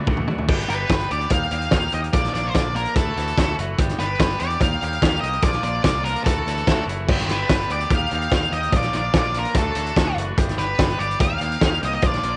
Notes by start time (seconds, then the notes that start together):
0.07 D2 E3 A3 D4 F#4, kick, mid tom
0.17 mid tom
0.27 A3 D4 F#4, floor tom
0.38 floor tom
0.48 G1 B3 D4 G4, kick, crash
0.60 closed hi-hat
0.68 G1 B3 D4 G4 B4, closed hi-hat
0.89 G1 B3 D4 G4, kick, snare, closed hi-hat
1.00 closed hi-hat
1.10 D2 B3 D4 G4 D5, closed hi-hat
1.21 closed hi-hat
1.30 D#2 A#3 D#4 G4 F5, kick, closed hi-hat
1.51 D#2 A#3 D#4 G4, closed hi-hat
1.61 closed hi-hat
1.71 D#2 A#3 D#4 G4, kick, snare, closed hi-hat
1.92 D#2 A#3 D#4 G4 D#5, closed hi-hat
2.04 closed hi-hat
2.13 A#1 F3 A#3 D4 D5, kick, closed hi-hat
2.25 snare, closed hi-hat
2.34 A#1 F3 A#3 D4 D5, snare, closed hi-hat
2.47 C5
2.54 A#1 F3 A#3 D4 D5, kick, snare, closed hi-hat
2.74 F3 A#3 D4 A#4, closed hi-hat
2.85 closed hi-hat
2.95 D2 E3 A3 E4 F#4 A4, kick, closed hi-hat
3.16 D2 E3 A3 E4 F#4, closed hi-hat
3.27 closed hi-hat
3.37 D2 E3 A3 E4 F#4, kick, snare, closed hi-hat
3.58 F#1 E3 A3 E4 F#4, closed hi-hat
3.78 G1 B3 D4 G4, kick, closed hi-hat
3.89 snare, closed hi-hat
3.99 G1 B3 D4 G4 B4, snare, closed hi-hat
4.18 G1 B3 D4 G4, kick, snare, closed hi-hat
4.30 closed hi-hat
4.39 E2 B3 D4 G4 D5, closed hi-hat
4.50 closed hi-hat
4.60 D#2 A#3 D#4 G4 F5, kick, closed hi-hat
4.82 D#2 A#3 D#4 G4, closed hi-hat
4.93 closed hi-hat
5.02 D#2 A#3 D#4 G4, kick, snare, closed hi-hat
5.21 C2 A#3 D#4 D#5, closed hi-hat
5.25 G4
5.33 closed hi-hat
5.43 A#1 F3 A#3 D4 F4 D5, kick, closed hi-hat
5.53 snare
5.63 A#1 F3 A#3 D4 F4 D5, closed hi-hat
5.84 C2 F3 A#3 D4 F4 D5, kick, snare, closed hi-hat
6.04 F3 A#3 D4 F4 A#4, closed hi-hat
6.16 closed hi-hat
6.24 D2 E3 A3 E4 F#4 A4, kick, closed hi-hat
6.46 D2 E3 A3 E4 F#4, closed hi-hat
6.57 closed hi-hat
6.67 D2 E3 A3 E4 F#4, kick, snare, closed hi-hat
6.86 F#1 E3 A3 E4 F#4, closed hi-hat
7.09 G1 B3 D4 G4, kick, crash
7.19 snare, closed hi-hat
7.27 G1 B3 D4, snare, closed hi-hat
7.31 G4 B4
7.49 G1 B3 D4 G4, kick, snare, closed hi-hat
7.60 closed hi-hat
7.69 D2 B3 D4 G4 D5, closed hi-hat
7.80 closed hi-hat
7.90 D#2 A#3 D#4 G4, kick, closed hi-hat
7.95 F5
8.11 D#2 A#3 D#4 G4, closed hi-hat
8.22 closed hi-hat
8.32 D#2 A#3 D#4 G4, kick, snare, closed hi-hat
8.52 D#2 A#3 D#4 D#5, closed hi-hat
8.56 G4
8.63 closed hi-hat
8.73 A#1 F3 A#3 D4 F4, kick, closed hi-hat
8.77 D5
8.82 snare, closed hi-hat
8.93 A#1 F3 A#3 D4 F4 D5, snare, closed hi-hat
9.14 A#1 F3 A#3 D4 F4, kick, snare, closed hi-hat
9.19 D5
9.34 F3 A#3 D4 F4, closed hi-hat
9.39 A#4
9.45 closed hi-hat
9.55 D2 E3 A3 D4 F#4 A4, kick, closed hi-hat
9.75 D2 E3 A3 D4 F#4, closed hi-hat
9.86 closed hi-hat
9.96 D2 E3 A3 D4 F#4, kick, snare, closed hi-hat
10.16 F#1 E3 A3 D4 F#4, closed hi-hat
10.37 G1 B3 D4 G4, kick, closed hi-hat
10.49 snare, closed hi-hat
10.57 G1 B3 D4 G4 B4, snare, closed hi-hat
10.78 G1 B3 D4 G4, kick, snare, closed hi-hat
10.90 closed hi-hat
10.99 G1 B3 D4 G4 D5, closed hi-hat
11.11 closed hi-hat
11.20 D#2 A#3 D#4 G4 F5, kick, closed hi-hat
11.40 D#2 A#3 D#4 G4, closed hi-hat
11.52 closed hi-hat
11.61 D#2 A#3 D#4 G4, kick, snare, closed hi-hat
11.81 C2 A#3 D#4 G4 D#5, closed hi-hat
11.93 D#5, closed hi-hat
12.02 A#1 F3 A#3 D4 F4, kick, closed hi-hat
12.06 D5
12.13 snare, closed hi-hat
12.23 A#1 F3 A#3 D4 F4, closed hi-hat